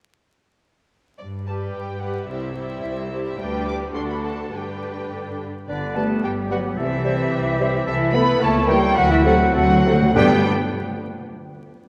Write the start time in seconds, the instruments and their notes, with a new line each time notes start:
1.18 cello section G2, violin section D5
1.47 viola section G3 G4, violin section G4 B4 A5
1.74 cello section G2, violin section G5
2.01 viola section G3 G4, violin section G4 B4 F#5
2.28 cello section C2, viola section G3 E4, violin section G4 C5 E5
2.56 viola section G3 E4, violin section G4 C5
2.84 cello section C2
3.12 viola section G3 E4, violin section G4 C5
3.39 cello section D2, viola section G3 D4, violin section G4 B4 G5
3.68 violin section D6
3.95 cello section D2, viola section D3 D4, violin section F#4 A4 C6
4.10 violin section B5
4.25 violin section A5
4.53 cello section G2, viola section D3 D4, violin section G4 B4 G5
5.68 double bass section G1, cello section D3, french horn section D3, violin section D4 D5, oboe B4, flute D5
5.95 bassoon G3, viola section G3 B3, cello section A3, french horn section A3, violin section A4 A5, clarinet B4, flute A5
6.23 double bass section G1, cello section G3, french horn section G3, violin section G4 G5, oboe G4, flute G5
6.50 cello section F#3, french horn section F#3, viola section G3 B3, bassoon G3, violin section F#4 F#5, clarinet B4, flute F#5
6.77 double bass section C2, cello section E3, french horn section E3, viola section G3 C4, violin section E4 E5, oboe A4, flute E5
7.04 bassoon G3, viola section G3 C4, clarinet C5
7.31 double bass section C2, oboe G4
7.60 bassoon G3, viola section G3 C4, clarinet C5
7.86 double bass section C2, cello section E3, french horn section E3, violin section E4 E5, oboe A4, flute E5
8.14 bassoon E3, viola section A3 E4, cello section B3, french horn section B3, clarinet A4, violin section B4 B5, flute B5
8.40 double bass section C#2, cello section A3, french horn section A3, viola section A#3 E4, violin section A4 A5, oboe C#5, flute A5
8.68 bassoon E3, french horn section G3, cello section G3, viola section A#3 E4, violin section G4 G5, clarinet A#4, flute G5
8.96 double bass section D2, timpani D3, cello section F#3, french horn section F#3, violin section F#4 F#5, oboe B4, flute F#5
9.04 timpani D3
9.10 timpani D3, french horn section E3, cello section E3, violin section E4 E5, flute E5
9.20 timpani D3
9.24 bassoon C3, timpani D3, cello section F#3, french horn section F#3, viola section A3 C4, violin section F#4 F#5, clarinet A4, flute F#5
9.35 timpani D3
9.44 timpani D3
9.51 double bass section D2, timpani D3, french horn section F#3, cello section F#3, violin section F#4, oboe A4, flute F#5
9.55 violin section F#5
9.60 timpani D3
9.68 timpani D3
9.76 timpani D3
9.85 bassoon C3, timpani D3, viola section A3 C4, clarinet A4
9.93 timpani D3
10.02 timpani D3
10.15 double bass section G2, timpani G2, bassoon D3, french horn section G3, cello section G3, viola section B3 D4, clarinet G4, oboe B4, flute G5, violin section G5